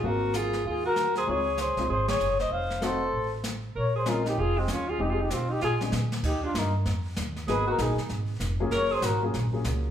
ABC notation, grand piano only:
X:1
M:4/4
L:1/8
Q:"Swing" 1/4=193
K:Bbm
V:1 name="Grand piano"
[G,B,Cf]4- [G,B,Cf] z3 | [A,CEF] z2 [A,CEF] z4 | z2 [=A,CEG] z4 z | z2 [A,CDF] z4 z |
[A,CE=G] z4 [A,C=DA] z2 | z8 | [G,B,_CEA]3 z4 [G,B,DFA]- | [G,B,DFA]2 z [G,B,DFA] z [G,B,DFA]3 |]